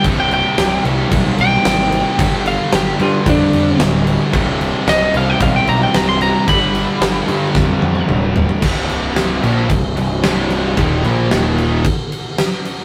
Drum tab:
CC |x-x-x-x-x-x-x-x-|x-x-x-x-x-x-x-x-|x-x-x-x-x-x-x-x-|x-x-x-x---------|
SD |----o-------o---|----o-------o---|----o-------o---|----o---o-------|
T1 |----------------|----------------|----------------|----------oo----|
T2 |----------------|----------------|----------------|------------o---|
FT |----------------|----------------|----------------|--------------oo|
BD |o-------o-------|o-------o-------|o-------o-------|o-------o-------|

CC |x-x-x-x-x-x-x-x-|x-x-x-x-x-x-x-x-|
SD |----o-------o---|----o-------o---|
T1 |----------------|----------------|
T2 |----------------|----------------|
FT |----------------|----------------|
BD |o-------o-------|o-------o-------|